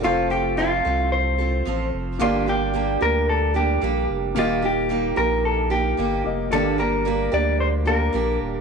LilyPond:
<<
  \new Staff \with { instrumentName = "Clean electric guitar" } { \time 4/4 \key g \minor \tempo 4 = 111 f'8 g'8 f'4 c''4. r8 | f'8 g'4 bes'8 a'8 g'4 r8 | f'8 g'4 bes'8 a'8 g'4 r8 | a'8 bes'4 d''8 c''8 bes'4 r8 | }
  \new Staff \with { instrumentName = "Grand piano" } { \time 4/4 \key g \minor <a f' c''>1 | <bes g' d''>1 | <bes g' ees''>2.~ <bes g' ees''>8 <bes g' ees''>8 | <a bes g' d''>2~ <a bes g' d''>8 <bes g' f''>4. | }
  \new Staff \with { instrumentName = "Steel-string acoustic guitar" } { \time 4/4 \key g \minor <f c' f' a'>8 <c' f' a'>8 <f c' f' a'>8 <c' f' a'>4 <c' f' a'>8 <f c' f' a'>4 | <g, d g bes d' g'>8 <g bes d' g'>8 <g bes d' g'>8 <g bes d' g'>4 <g bes d' g'>8 <g bes d' g'>4 | <ees g bes ees' g'>8 <bes ees' g'>8 <g bes ees' g'>8 <bes ees' g'>4 <bes ees' g'>8 <g bes ees' g'>4 | <g, d g bes d' g'>8 <g bes d' g'>8 <g bes d' g'>8 <g bes d' g'>4 <g bes d' g'>8 <g bes d' g'>4 | }
  \new Staff \with { instrumentName = "Sub bass" } { \clef bass \time 4/4 \key g \minor f,,4. c,4. a,,8 f,,8 | g,,4. d,4. bes,,8 f,,8 | ees,,4. bes,,4. g,,8 f,,8 | g,,4. d,4. bes,,8 ees,,8 | }
>>